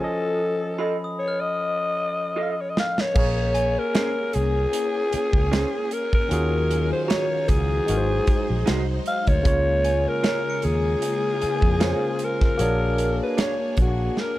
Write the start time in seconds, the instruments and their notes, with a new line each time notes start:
Already playing: glockenspiel A#6
0.00 tine electric piano F3 C#4 A4 G#5, alto saxophone A4
0.04 tine electric piano D#5
0.78 clean electric guitar F4 A4 D#5, glockenspiel B5
1.04 glockenspiel D#6
1.19 alto saxophone C#5
1.28 glockenspiel F6
1.41 alto saxophone D#5
2.36 clean electric guitar F4 A4 D#5
2.42 alto saxophone F5
2.51 alto saxophone D#5
2.61 alto saxophone C#5
2.70 alto saxophone D#5
2.77 alto saxophone F5, snare
2.98 alto saxophone C#5, snare
3.14 fingered electric bass A#1, tine electric piano A#3 G#4 A#4, string machine A#3 C#4 G#4, kick, crash
3.19 tine electric piano C#5
3.54 glockenspiel G#5, closed hi-hat
3.79 alto saxophone A#4
3.94 clean electric guitar C#4 G#4 C5, snare, closed hi-hat
4.33 fingered electric bass C2, alto saxophone G#4, closed hi-hat
4.73 closed hi-hat
5.13 muted fingered electric bass stroke, closed hi-hat
5.33 fingered electric bass C#2, kick
5.51 clean electric guitar C#4 G#4 C5, snare, closed hi-hat
5.91 alto saxophone A#4, closed hi-hat
6.13 alto saxophone A#4, kick
6.28 fingered electric bass D#2, tine electric piano D#3 C#4 F4 F#4, closed hi-hat
6.33 string machine D#3 F#3 F5, tine electric piano G#4
6.71 closed hi-hat
6.93 alto saxophone C5
7.04 alto saxophone C5
7.08 clean electric guitar F#4 G#4 C#5, alto saxophone C#5, glockenspiel A#5, snare, closed hi-hat
7.48 fingered electric bass C#2, alto saxophone G#4, kick, closed hi-hat
7.86 fingered electric bass G#1, tine electric piano G#3 D#4 F#4, string machine G#3 D#4 C5, closed hi-hat
7.90 tine electric piano A#4
7.97 tine electric piano C5
8.27 kick, closed hi-hat
8.50 fingered electric bass A#1
8.66 fingered electric bass C2, clean electric guitar D#4 F#4 C5, snare, closed hi-hat
9.06 alto saxophone F5, closed hi-hat
9.27 fingered electric bass D2, alto saxophone C#5, kick, closed hi-hat
9.43 fingered electric bass C#2, tine electric piano C#3 A#3 F4, kick, closed hi-hat
9.47 string machine C#3 G#3 A#3 F4, tine electric piano C#5
9.84 glockenspiel G#5, closed hi-hat
10.08 alto saxophone A#4
10.23 clean electric guitar F4 A#4 C#5, glockenspiel A#5, snare, closed hi-hat
10.50 glockenspiel C#7
10.62 fingered electric bass D#2, alto saxophone G#4, closed hi-hat
11.02 closed hi-hat
11.41 glockenspiel G#5, muted fingered electric bass stroke, closed hi-hat
11.62 fingered electric bass F2, kick
11.80 tine electric piano C#3 A#3 F4 C5, clean electric guitar F4 A#4 C#5, snare, closed hi-hat
12.19 closed hi-hat
12.24 alto saxophone A#4
12.41 alto saxophone A#4, kick, snare
12.58 fingered electric bass A#1, tine electric piano A#3 F#4 G#4 C#5, string machine D4 G#4, closed hi-hat
12.62 tine electric piano D4
12.98 closed hi-hat
13.23 alto saxophone B4
13.37 clean electric guitar D4 G#4 C#5, alto saxophone C#5, snare, closed hi-hat
13.77 fingered electric bass A#1, kick, closed hi-hat
13.81 alto saxophone F#4
14.17 alto saxophone A#4, snare